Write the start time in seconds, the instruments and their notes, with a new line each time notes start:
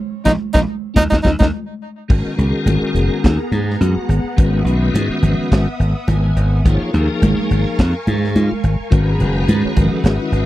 0.24 slap bass A#1, tonewheel organ G#3 A#3 D#4, tenor saxophone D#4, kick, snare, high conga
0.54 slap bass A#1, tonewheel organ G#3 A#3 D#4, tenor saxophone D#4, kick, snare, high conga
0.94 slap bass D#2, tonewheel organ A#3 C#4 D#4, tenor saxophone D#4, kick, snare, high conga
1.10 slap bass D#2, tonewheel organ A#3 C#4 D#4, tenor saxophone D#4, kick, snare, high conga
1.23 slap bass D#2, tonewheel organ A#3 C#4 D#4, tenor saxophone D#4, kick, snare, high conga
1.39 slap bass D#2, tonewheel organ A#3 C#4 D#4, tenor saxophone D#4, kick, snare, high conga
2.08 slap bass G#1, tonewheel organ D#3 G#3 C#4 F#4 A#4, string machine B3 G#4 F#5 A#5, kick, crash, muted conga
2.36 slap bass C#2, tonewheel organ D#3 G#3 C#4 F#4 G#4 A#4, closed hi-hat, muted conga
2.66 slap bass G#1, closed hi-hat, muted conga, high conga
2.81 muted slap bass stroke
2.94 slap bass F#1, closed hi-hat
3.24 slap bass D#2, tonewheel organ A#4, kick, snare, closed hi-hat
3.52 slap bass G#2, tonewheel organ G#4, closed hi-hat, muted conga, high conga
3.70 snare
3.81 slap bass F#2, tonewheel organ F#4, closed hi-hat, high conga
3.96 muted slap bass stroke
4.09 slap bass G#1, closed hi-hat
4.37 slap bass G#1, tonewheel organ D#3 G#3 C#4 F#4 B4, string machine E5 D#6, kick, closed hi-hat, muted conga
4.64 slap bass B1, tonewheel organ D#3 G#3 C#4 F#4 B4, closed hi-hat, muted conga
4.94 slap bass G#2, closed hi-hat, muted conga, high conga
5.09 muted slap bass stroke
5.22 slap bass G#1, closed hi-hat, low conga
5.52 slap bass G#1, kick, snare, closed hi-hat
5.80 slap bass G#1, closed hi-hat
6.07 slap bass G#1, tonewheel organ G#5, closed hi-hat, high conga
6.36 slap bass G#1, closed hi-hat
6.65 slap bass G#1, tonewheel organ F3 A#3 D#4 F4 G#4 C#5, string machine A#4 F5 G#5 C#6, kick, closed hi-hat, muted conga
6.93 slap bass D#2, tonewheel organ F3 A#3 D#4 G#4 A#4, closed hi-hat, muted conga
7.22 slap bass G#1, closed hi-hat, muted conga, high conga
7.51 slap bass G#1, closed hi-hat
7.79 slap bass F2, tonewheel organ A#4, kick, snare, closed hi-hat
8.07 slap bass G#2, tonewheel organ G#4, closed hi-hat, muted conga, high conga
8.24 snare
8.36 slap bass G#2, tonewheel organ F4, closed hi-hat, high conga
8.52 muted slap bass stroke
8.64 slap bass G#1, closed hi-hat
8.90 slap bass G#1, tonewheel organ D#3 G#3 C#4 F#4 B4, string machine G#4 F#5 A#5 B5, kick, closed hi-hat, muted conga
9.18 slap bass F#1, tonewheel organ D#3 G#3 C#4 F#4 B4, closed hi-hat, muted conga
9.48 slap bass G#2, closed hi-hat, muted conga, high conga
9.65 tonewheel organ C#5, muted slap bass stroke
9.75 slap bass G#1, tonewheel organ D#3 G#3 C#4 F#4 A#4 B4, string machine B4 E5 D#6, kick, closed hi-hat, low conga
9.92 tonewheel organ A4
10.03 slap bass G#1, tonewheel organ G#4, snare, closed hi-hat
10.22 tonewheel organ E4
10.32 slap bass G#1, tonewheel organ F#4, closed hi-hat, muted conga